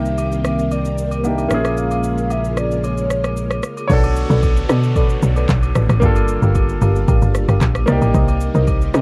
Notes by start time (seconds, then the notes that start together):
Already playing: C2 D#3 A#3 C4 D4 G4 E5
0.05 shaker
0.18 high agogo, shaker
0.32 shaker
0.45 cross-stick, high agogo, shaker
0.59 shaker
0.71 D5, high agogo, shaker
0.85 shaker
0.98 D5, shaker
1.11 high agogo, shaker
1.24 A#3 D4 D#4 G4 E5, low woodblock, shaker
1.38 high agogo, shaker
1.49 A#1 C#3 G#3 A#3 C#4 F4, cross-stick, shaker
1.54 G#4
1.65 cross-stick, high agogo, shaker
1.77 F5, shaker
1.91 high agogo, shaker
2.04 F5, shaker
2.18 shaker
2.30 E5, high agogo, low woodblock, shaker
2.44 shaker
2.57 D5, cross-stick, high agogo, shaker
2.71 shaker
2.84 C#5, high agogo, shaker
2.97 shaker
3.10 cross-stick, shaker
3.24 cross-stick, high agogo, shaker
3.37 shaker
3.51 cross-stick, high agogo, shaker
3.63 cross-stick, shaker
3.77 high agogo, shaker
3.88 B1 D3 A3 B3 D4 F#4 A4 B4 C#5 D5, kick, downlifter, shaker
3.93 A4
4.03 high agogo, shaker
4.16 shaker
4.30 B1 A4 B4 D5, shaker
4.43 kick, high agogo, shaker
4.57 shaker
4.69 B2 A4 B4 D5, cross-stick, high agogo, shaker
4.83 shaker
4.96 A4 B4 D5, kick, high agogo, shaker
5.09 shaker
5.22 B1, shaker
5.36 A4 B4 D5, high agogo, shaker
5.49 B1, kick, clap, shaker
5.63 high agogo, shaker
5.75 A1 A4 B4 D5, cross-stick, shaker
5.89 A1, cross-stick, high agogo, shaker
6.00 G1 G3 A#3 D4 F4 G4 A#4 F5, kick, shaker
6.05 A4
6.16 high agogo, shaker
6.28 shaker
6.42 G1 G4 A#4 F5, shaker
6.55 kick, high agogo, shaker
6.69 shaker
6.81 G1 G4 A#4 F5, high agogo, shaker
6.96 shaker
7.08 A1 G4 A#4 F5, kick, high agogo, shaker
7.22 G1, shaker
7.35 cross-stick, shaker
7.48 G1 G4 A#4 F5, cross-stick, high agogo, shaker
7.61 A#1, kick, clap, shaker
7.75 cross-stick, high agogo, shaker
7.86 C2 C3 A#3 D#4 A#4 C5 D5 D#5, cross-stick, shaker
7.92 G4
8.02 A1, high agogo, shaker
8.14 C2 A#4 C5 D#5, kick, shaker
8.28 high agogo, shaker
8.41 shaker
8.54 C2 A#4 C5 D#5, shaker
8.67 kick, high agogo, shaker
8.81 shaker
8.94 C3 A#4 C5 D#5, cross-stick, high agogo, shaker